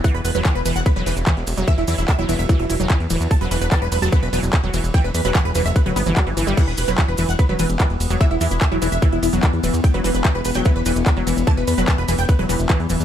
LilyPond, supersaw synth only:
\new Staff \with { instrumentName = "Supersaw synth" } { \time 4/4 \key c \lydian \tempo 4 = 147 fis''16 b'16 b'16 b'16 fis''16 b'16 b'16 fis''16 b'16 b'16 b'16 r4 r16 | e''16 e'16 e'16 e'16 e''16 e'16 e'16 e''16 e'16 e'16 e'16 r4 r16 | a''16 b'16 b'16 b'16 a''16 b'16 b'16 a''16 b'16 b'16 b'16 r4 r16 | g''16 b'16 b'16 b'16 fis''16 b'16 b'16 e''16 b'16 b'16 b'16 r4 r16 |
fis''16 b'16 b'16 b'16 fis''16 b'16 b'16 fis''16 b'16 b'16 b'16 r4 r16 | e''16 e'16 e'16 e'16 e''16 e'16 e'16 e''16 e'16 e'16 e'16 r4 r16 | g''16 b'16 b'16 b'16 g''16 b'16 b'16 g''16 b'16 b'16 b'16 r4 r16 | a''16 b'16 b'16 b'16 a''16 b'16 b'16 g''16 b'16 b'16 b'16 r4 r16 | }